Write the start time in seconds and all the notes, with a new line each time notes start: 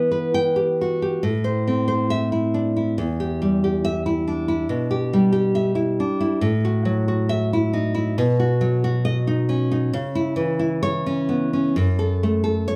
Already playing: E3 B3 B4
0.12 B4
0.34 G5
0.56 G4
0.81 F#4
1.02 G4
1.23 A2
1.44 C5
1.68 C4
1.88 C5
2.10 E5
2.32 E4
2.54 D4
2.77 E4
2.98 E2
3.20 G4
3.42 G3
3.64 G4
3.85 E5
4.06 E4
4.28 D4
4.48 E4
4.69 B2
4.91 G4
5.13 G3
5.32 G4
5.55 E5
5.75 E4
6.00 D4
6.21 E4
6.41 A2
6.65 F#4
6.85 F#3
7.08 F#4
7.29 E5
7.53 E4
7.73 D#4
7.95 E4
8.18 B2
8.40 F#4
8.61 F#3
8.84 F#4
9.05 D#5
9.27 D#4
9.49 C#4
9.72 D#4
9.93 C#3
10.15 E4
10.36 E3
10.59 E4
10.83 C#5
11.06 C#4
11.29 B3
11.53 C#4
11.76 F#2
11.99 A4
12.23 A3
12.44 A4
12.68 C#5